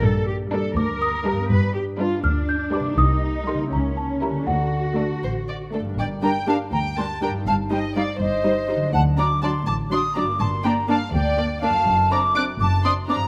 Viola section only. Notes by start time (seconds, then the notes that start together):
0.52 G3
1.25 G3
1.99 G3
2.73 G3
3.47 G3
4.22 G3
4.97 A3
5.73 A3
6.22 G3 D4
6.48 G3 D4
6.97 G3 D4
7.22 G3 D4
7.71 G3 D#4
7.95 G3 D#4
8.44 G3 D#4
8.69 G3 D#4
9.18 F#3 D4
9.43 F#3 D4
9.91 F#3 D4
10.16 F#3 D4
10.64 A#3 D4
10.88 A#3 D4
11.38 A#3 D4
11.63 A#3 D4
12.11 C4 D4
12.35 C4 D4
12.84 C4 D4
13.08 C4 D4